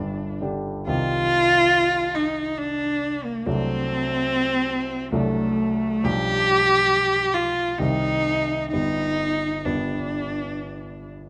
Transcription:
Already playing: grand piano G1 G2 D3 D4 G4 B4 B5, cello D4
0.41 grand piano D3 D4 G4
0.87 grand piano C2 D#3 C4 G4, cello F4
2.15 cello D#4
2.59 cello D4
3.25 cello A#3
3.46 grand piano C2 F#3 A3 D4, cello C4
5.12 grand piano C2 F#3 A3 D4, cello A3
6.03 grand piano B1 F3 G3 D4, cello G4
7.34 cello F4
7.79 grand piano C2 D#3 G3 C4, cello D#4
8.72 grand piano G1 G3 B3, cello D#4
9.65 grand piano G1 G3 B3, cello D4

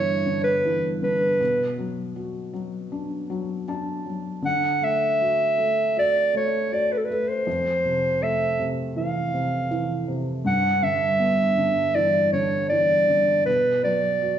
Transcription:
Already playing: felt piano G2 D3 E3 B3, clarinet C#5
0.26 felt piano D3
0.44 clarinet B4
0.65 felt piano E3
1.02 felt piano D3, clarinet B4
1.40 felt piano B2
1.78 felt piano F#3
2.16 felt piano F#4
2.53 felt piano F#3
2.92 felt piano D4
3.30 felt piano F#3
3.68 felt piano D4 A5
4.06 felt piano F#3
4.42 felt piano D3, clarinet F#5
4.82 felt piano A3, clarinet E5
5.21 felt piano F#4
5.57 felt piano A3
5.97 felt piano F#4, clarinet D5
6.33 felt piano A3, clarinet C#5
6.71 felt piano F#4, clarinet D5
6.93 clarinet B4
6.98 clarinet A4
7.05 clarinet B4
7.10 felt piano A3
7.29 clarinet C5
7.47 felt piano F2
7.85 felt piano C3
8.21 felt piano A3, clarinet E5
8.59 felt piano C3
8.96 felt piano E3, clarinet F5
9.34 felt piano C3
9.71 felt piano E3
10.08 felt piano C3
10.45 felt piano G2, clarinet F#5
10.83 felt piano D3, clarinet E5
11.19 felt piano B3
11.57 felt piano D3
11.95 felt piano E3, clarinet D5
12.33 felt piano D3, clarinet C#5
12.69 felt piano E3, clarinet D5
13.08 felt piano D3
13.46 felt piano B2, clarinet B4
13.83 felt piano F#3, clarinet D5
14.21 felt piano F#4

